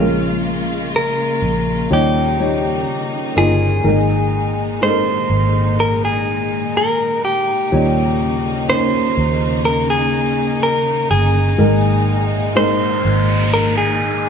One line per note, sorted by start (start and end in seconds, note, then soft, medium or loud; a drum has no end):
0.00 1.39 A#1 medium
0.00 3.82 C#3 medium
0.00 1.82 G#3 medium
0.00 1.90 G#3 medium
0.00 3.82 A#3 soft
0.00 1.82 C#4 medium
0.00 0.91 F4 medium
0.00 1.90 F4 medium
0.00 1.83 A#4 medium
0.96 1.93 A#4 medium
1.42 1.88 A#1 medium
1.90 2.84 D#2 medium
1.90 3.32 A#2 soft
1.90 3.83 D#3 soft
1.90 2.37 G3 medium
1.90 2.37 D#4 medium
1.90 3.84 D#4 medium
1.90 3.34 G4 medium
1.90 2.37 C#5 medium
2.39 3.31 G3 medium
2.39 3.31 D#4 soft
2.39 3.31 C#5 medium
3.36 3.82 G1 medium
3.36 3.82 A#3 medium
3.36 3.83 D#4 medium
3.36 3.83 F4 medium
3.36 4.83 G#4 medium
3.84 5.26 G#1 medium
3.84 5.26 G#2 soft
3.84 7.69 A#2 medium
3.84 5.26 D#3 soft
3.84 7.68 D#3 medium
3.84 4.77 G#3 medium
3.84 7.68 G#3 soft
3.84 4.76 D#4 soft
3.84 14.29 D#4 medium
3.84 4.77 A#4 medium
4.81 6.65 G#3 medium
4.81 6.66 D#4 medium
4.81 4.89 A4 medium
4.81 5.80 C5 medium
4.89 6.69 A#4 medium
5.30 7.19 G#1 medium
5.80 6.02 A#4 medium
6.05 6.77 G#4 medium
6.77 7.24 A#4 medium
7.25 8.69 G4 medium
7.72 9.14 D#2 medium
7.72 9.13 A#2 soft
7.72 11.56 C#3 medium
7.72 11.55 D#3 medium
7.72 8.64 G3 medium
7.72 11.55 A#3 soft
7.72 8.64 D#4 medium
7.72 8.64 C#5 medium
8.68 10.53 A#3 medium
8.68 10.53 C#4 medium
8.68 10.53 D#4 medium
8.68 9.65 C5 medium
9.17 11.07 D#2 medium
9.65 9.90 A#4 medium
9.90 10.63 G#4 medium
10.63 11.10 A#4 medium
11.10 11.56 G1 medium
11.10 12.56 G#4 medium
11.58 13.00 G#1 medium
11.58 13.00 G#2 soft
11.58 14.29 A#2 medium
11.58 13.00 D#3 medium
11.58 14.29 D#3 medium
11.58 12.51 G#3 medium
11.58 13.51 G#3 medium
11.58 12.51 D#4 medium
11.58 12.51 A#4 medium
11.58 noise sweep medium
12.55 14.29 G#3 medium
12.55 14.29 D#4 medium
12.55 14.29 A#4 medium
12.55 13.53 C5 medium
13.05 14.29 G#1 medium
13.52 14.29 G#3 medium
13.52 13.77 A#4 medium
13.78 14.29 G#4 medium